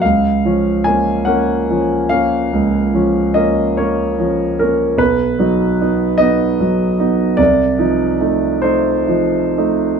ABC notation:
X:1
M:12/8
L:1/8
Q:3/8=48
K:Bbphr
V:1 name="Grand piano"
f2 a g2 f3 e d2 B | =B3 ^d3 =d3 =c3 |]
V:2 name="Grand piano"
D,, [F,D] [B,D] [B,D] [F,D] [B,D] D,, [F,D] [B,D] [B,D] [F,D] [B,D] | =B,,, [^F,^D] [=B,D] [B,D] [F,D] [B,D] =C,, [=F,E] [=A,E] [A,E] [F,E] [A,E] |]